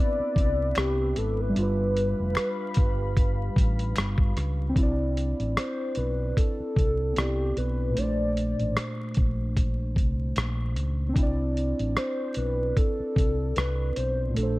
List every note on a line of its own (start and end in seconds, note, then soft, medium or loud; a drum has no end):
0.00 1.51 B3 medium
0.00 1.48 C4 medium
0.00 1.52 D4 medium
0.00 1.55 E4 medium
0.00 1.52 B4 medium
0.00 0.79 D5 loud
0.00 1.53 E5 medium
0.00 1.51 D6 medium
0.20 muted fingered electric bass stroke soft
0.36 0.72 C2 medium
0.36 kick medium
0.36 closed hi-hat medium
0.75 1.12 C2 loud
0.75 1.19 G4 loud
0.75 finger snap medium
0.75 cross-stick loud
0.75 closed hi-hat medium
1.16 1.52 G#1 medium
1.16 1.42 A4 medium
1.16 closed hi-hat medium
1.41 3.97 B4 loud
1.49 4.68 G3 medium
1.54 2.12 G1 loud
1.54 4.71 D4 medium
1.54 4.73 G4 medium
1.54 4.72 F5 medium
1.54 4.73 B5 medium
1.54 closed hi-hat medium
1.58 4.73 F4 medium
1.63 4.75 B4 medium
1.97 closed hi-hat medium
2.20 2.34 F1 medium
2.35 finger snap medium
2.35 cross-stick loud
2.35 closed hi-hat medium
2.74 3.48 G1 medium
2.74 kick medium
2.74 closed hi-hat medium
3.17 kick medium
3.17 closed hi-hat medium
3.56 3.92 A1 medium
3.56 kick medium
3.56 closed hi-hat medium
3.79 closed hi-hat soft
3.96 4.32 G1 medium
3.96 finger snap medium
3.96 cross-stick loud
3.96 closed hi-hat medium
4.18 kick medium
4.37 4.72 C#2 medium
4.37 cross-stick soft
4.37 closed hi-hat medium
4.69 7.08 C4 medium
4.74 5.32 C2 loud
4.74 7.11 D4 medium
4.74 kick loud
4.74 closed hi-hat medium
4.78 7.13 E4 medium
4.83 7.15 D5 medium
5.17 closed hi-hat medium
5.40 5.54 A1 medium
5.40 closed hi-hat soft
5.57 5.99 C5 medium
5.57 cross-stick loud
5.57 closed hi-hat medium
5.95 6.32 B1 medium
5.95 6.36 B4 medium
5.95 closed hi-hat medium
6.37 7.20 A4 loud
6.37 kick medium
6.37 closed hi-hat medium
6.60 muted fingered electric bass stroke soft
6.76 7.12 C2 medium
6.76 kick medium
6.76 closed hi-hat medium
7.13 7.95 B3 soft
7.13 7.94 C4 soft
7.13 closed hi-hat medium
7.17 7.52 C2 medium
7.17 7.96 E4 soft
7.17 7.57 G4 medium
7.17 7.98 D5 medium
7.17 cross-stick loud
7.57 7.92 B1 medium
7.57 7.99 B4 medium
7.57 closed hi-hat medium
7.89 11.08 A#2 medium
7.94 8.52 A#1 loud
7.94 11.11 A3 medium
7.94 closed hi-hat medium
7.98 11.12 D4 medium
7.98 8.77 D5 loud
8.03 11.15 C5 medium
8.37 closed hi-hat medium
8.60 8.74 A1 medium
8.60 closed hi-hat soft
8.77 cross-stick loud
8.77 closed hi-hat medium
9.14 9.97 A#1 medium
9.14 kick medium
9.14 closed hi-hat medium
9.57 kick medium
9.57 closed hi-hat medium
9.96 10.32 C2 medium
9.96 kick medium
9.96 closed hi-hat medium
10.36 10.77 A#1 medium
10.36 cross-stick loud
10.36 closed hi-hat medium
10.76 11.12 C#2 medium
10.76 closed hi-hat medium
11.09 14.28 C4 medium
11.14 11.72 C2 loud
11.14 14.31 D4 medium
11.14 kick loud
11.14 closed hi-hat medium
11.18 14.33 E4 medium
11.23 14.35 D5 medium
11.57 closed hi-hat medium
11.79 11.94 A1 medium
11.79 closed hi-hat soft
11.97 12.38 C5 loud
11.97 cross-stick loud
11.97 closed hi-hat medium
12.34 12.72 B1 medium
12.34 12.79 B4 loud
12.34 closed hi-hat medium
12.77 13.58 A4 loud
12.77 kick medium
12.77 closed hi-hat medium
13.00 muted fingered electric bass stroke soft
13.16 13.52 C2 medium
13.16 kick medium
13.16 closed hi-hat medium
13.56 13.92 C2 medium
13.56 13.98 B4 loud
13.56 cross-stick loud
13.56 closed hi-hat medium
13.96 14.32 B1 medium
13.96 14.38 C5 medium
13.96 closed hi-hat medium
14.29 14.59 A#2 medium
14.34 14.59 A#1 loud
14.34 14.59 A3 medium
14.34 14.59 A4 medium
14.34 closed hi-hat medium
14.38 14.59 D4 medium
14.43 14.59 C5 medium